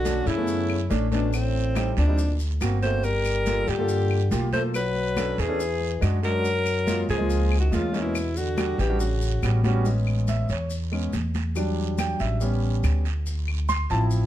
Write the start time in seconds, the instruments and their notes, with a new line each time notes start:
Already playing: upright bass B1, trombone D3, alto saxophone F#4
0.04 grand piano A3 C#4 D4, high conga, short guiro, maracas
0.26 upright bass F#2, trombone C#3, alto saxophone E4, short guiro, maracas
0.37 grand piano A3 B3 C#4
0.47 high conga, long guiro, maracas
0.70 high conga, claves
0.90 upright bass A1, grand piano A3 C#4 D4, high conga, short guiro, maracas
1.11 trombone B2, grand piano A3 C#4 D4, alto saxophone D4, high conga, short guiro, maracas
1.33 trombone A2, alto saxophone C4, long guiro, claves, maracas
1.55 high conga
1.75 grand piano G3 C4 D#4, high conga, short guiro, claves, maracas
1.97 upright bass D2, trombone A#2, alto saxophone D4, high conga, short guiro, maracas
2.07 grand piano G3 C4 D#4
2.18 high conga, long guiro, maracas
2.40 high conga, maracas
2.61 upright bass G1, grand piano A#3 C4 F#4, high conga, short guiro, claves, maracas
2.82 trombone A3, grand piano A#3 C4 F#4, alto saxophone C5, high conga, short guiro, maracas
3.03 trombone G3, alto saxophone A#4, high conga, long guiro, maracas
3.25 high conga, claves, maracas
3.46 grand piano A#3 F4 A4, high conga, short guiro, maracas
3.67 upright bass G2, trombone D3, alto saxophone G4, short guiro, maracas
3.78 grand piano A#3 F4 A4
3.88 high conga, long guiro, maracas
4.10 high conga, claves
4.31 upright bass B1, grand piano A#3 F4 G4, high conga, short guiro, maracas
4.52 trombone A3, grand piano A#3 F4 A4, alto saxophone C5, high conga, short guiro, maracas
4.74 trombone F#3, alto saxophone B4, high conga, long guiro, claves, maracas
4.95 high conga
5.17 grand piano C#4 D4 A4, high conga, short guiro, claves, maracas
5.38 upright bass E2, trombone E3, alto saxophone G#4, high conga, short guiro, maracas
5.48 grand piano C#4 D4 A4
5.59 high conga, long guiro, maracas
5.80 high conga
6.01 upright bass F#2, grand piano G#3 D4 F#4, high conga, short guiro, claves, maracas
6.23 trombone F#3, grand piano G#3 D4 F#4, alto saxophone A#4, high conga, short guiro, maracas
6.44 high conga, long guiro, maracas
6.65 high conga, claves, maracas
6.86 grand piano G#3 A#3 F4, high conga, short guiro, maracas
7.09 upright bass C#2, trombone F3, alto saxophone G#4, short guiro, maracas
7.18 grand piano G#3 A#3 F4
7.30 high conga, long guiro, maracas
7.51 high conga, claves
7.59 trombone D#3, alto saxophone F#4
7.71 upright bass E2, trombone C#3, grand piano G#3 A#3 F4, alto saxophone F4, high conga, short guiro, maracas
7.93 grand piano G#3 A#3 C#4, short guiro, maracas
8.02 trombone B2, alto saxophone E4
8.15 high conga, long guiro, claves, maracas
8.36 trombone D3, alto saxophone F#4, high conga, maracas
8.57 grand piano G3 D4 F#4, high conga, short guiro, claves, maracas
8.78 upright bass A1, trombone E3, alto saxophone G4, high conga, short guiro, maracas
8.89 grand piano G3 D4 F#4
9.00 trombone C#3, alto saxophone F#4, high conga, long guiro, maracas
9.21 high conga, maracas
9.43 upright bass A1, grand piano G3 B3 C#4 F#4, high conga, short guiro, claves, maracas
9.64 grand piano G3 B3 C#4 F#4, high conga, short guiro, maracas
9.85 grand piano G#3 B3 C#4, long guiro, maracas
10.07 high conga, claves
10.27 grand piano E5, high conga, short guiro, maracas
10.49 upright bass E2, grand piano C#5, short guiro, maracas
10.70 high conga, long guiro, maracas
10.92 grand piano G#3 B3 C#4, high conga, claves
11.13 upright bass E2, high conga, short guiro, maracas
11.35 high conga, short guiro, maracas
11.56 grand piano F#3 G3 D4, high conga, long guiro, claves, maracas
11.78 high conga
11.98 grand piano G5, high conga, short guiro, claves, maracas
12.19 upright bass A1, grand piano E5, high conga, short guiro, maracas
12.41 grand piano G3 B3 C#4, high conga, long guiro, maracas
12.62 high conga
12.83 upright bass D2, high conga, short guiro, claves, maracas
13.05 high conga, short guiro, maracas
13.26 high conga, long guiro, maracas
13.48 high conga, claves
13.69 grand piano C6, high conga, short guiro, maracas
13.90 upright bass A1, grand piano F3 C4 E4 A5, short guiro, maracas
14.11 high conga, long guiro, maracas